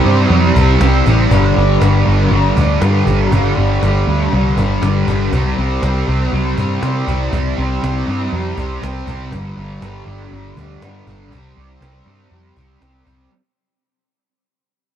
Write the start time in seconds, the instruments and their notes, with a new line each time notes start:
Already playing: distorted electric guitar C3
0.05 picked electric bass G2, distorted electric guitar G3 C4
0.30 picked electric bass F2, distorted electric guitar C3 G3 C4
0.55 picked electric bass C2, distorted electric guitar G3 C4, cajon bass
0.80 picked electric bass C2, distorted electric guitar C3 G3 C4, cajon slap
1.06 picked electric bass A1, distorted electric guitar G3 C4, cajon bass
1.30 picked electric bass G1, distorted electric guitar G2 D3 G3, cajon bass
1.55 picked electric bass G1, distorted electric guitar D3 G3
1.81 picked electric bass G1, distorted electric guitar G2 D3 G3, cajon slap
2.05 picked electric bass G1, distorted electric guitar D3 G3
2.30 picked electric bass G1, distorted electric guitar G2 D3 G3
2.56 picked electric bass D2, distorted electric guitar D3 G3, cajon bass
2.81 distorted electric guitar G2 D3 G3, picked electric bass G2, cajon slap
3.06 picked electric bass G1, distorted electric guitar D3 G3, cajon bass
3.32 picked electric bass G1, distorted electric guitar G2 D3 G3, cajon bass
3.56 picked electric bass G1, distorted electric guitar D3 G3
3.82 picked electric bass G1, distorted electric guitar G2 D3 G3, cajon slap
4.07 picked electric bass D2, distorted electric guitar D3 G3
4.31 picked electric bass C2, distorted electric guitar G2 D3 G3
4.57 picked electric bass G1, distorted electric guitar D3 G3, cajon bass
4.82 picked electric bass G1, distorted electric guitar G2 D3 G3, cajon slap
5.07 picked electric bass G1, distorted electric guitar D3 G3, cajon bass
5.32 picked electric bass C2, distorted electric guitar C3 G3 C4, cajon bass
5.58 picked electric bass C2, distorted electric guitar G3 C4
5.83 picked electric bass C2, distorted electric guitar C3 G3 C4, cajon slap
6.07 picked electric bass C2, distorted electric guitar G3 C4
6.32 picked electric bass C2, distorted electric guitar C3 G3 C4
6.57 picked electric bass G2, distorted electric guitar G3 C4, cajon bass
6.81 distorted electric guitar C3 G3 C4, picked electric bass C3, cajon slap
7.07 picked electric bass C2, distorted electric guitar G3 C4, cajon bass
7.32 picked electric bass C2, distorted electric guitar C3 G3 C4, cajon bass
7.57 picked electric bass C2, distorted electric guitar G3 C4
7.82 picked electric bass C2, distorted electric guitar C3 G3 C4, cajon slap
8.07 picked electric bass G2, distorted electric guitar G3 C4
8.32 picked electric bass F2, distorted electric guitar C3 G3 C4
8.57 picked electric bass C2, distorted electric guitar G3 C4, cajon bass
8.82 picked electric bass C2, distorted electric guitar C3 G3 C4, cajon slap
9.07 picked electric bass C2, distorted electric guitar G3 C4, cajon bass
9.31 picked electric bass G1, distorted electric guitar G2 D3 G3, cajon bass
9.57 picked electric bass G1, distorted electric guitar D3 G3
9.81 picked electric bass G1, distorted electric guitar G2 D3 G3, cajon slap
10.06 picked electric bass G1, distorted electric guitar D3 G3
10.31 picked electric bass G1, distorted electric guitar G2 D3 G3
10.57 picked electric bass D2, distorted electric guitar D3 G3, cajon bass
10.82 picked electric bass G2, distorted electric guitar G2 D3 G3, cajon slap
11.07 picked electric bass G1, distorted electric guitar D3 G3, cajon bass
11.32 picked electric bass C2, distorted electric guitar C3 G3 C4, cajon bass
11.57 picked electric bass C2, distorted electric guitar G3 C4
11.81 picked electric bass C2, distorted electric guitar C3 G3 C4, cajon slap
12.06 picked electric bass G2, distorted electric guitar G3 C4
12.31 picked electric bass F2, distorted electric guitar C3 G3 C4
12.56 picked electric bass C2, distorted electric guitar G3 C4, cajon bass
12.80 picked electric bass C2, distorted electric guitar C3 G3 C4, cajon slap
13.05 picked electric bass C2, distorted electric guitar G3 C4, cajon bass